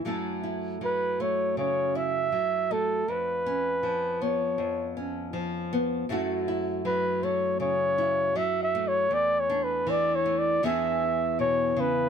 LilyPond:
<<
  \new Staff \with { instrumentName = "Flugelhorn" } { \time 4/4 \key fis \minor \tempo 4 = 79 r4 b'8 cis''8 cis''8 e''4 a'8 | b'4. cis''4 r4. | r4 b'8 cis''8 cis''4 \tuplet 3/2 { e''8 e''8 cis''8 } | \tuplet 3/2 { d''8 cis''8 b'8 d''8 cis''8 d''8 } e''4 cis''8 b'8 | }
  \new Staff \with { instrumentName = "Nylon-string guitar" } { \time 4/4 \key fis \minor << { <fis a e' a'>8 e'4 a4 e'4 a8 | r8 cis'4 b4 cis'4 b8 | <fis a e' fis'>8 e'4 a4 e'4 a8~ | a8 d'4 a8 <e b d' gis'>2 | } \\ { fis,4 fis4 cis4 fis4 | eis,4 eis4 eis,4 eis4 | fis,4 fis4 cis4 fis4 | e,4 e4 e,4 b,8 cis8 | } >> }
>>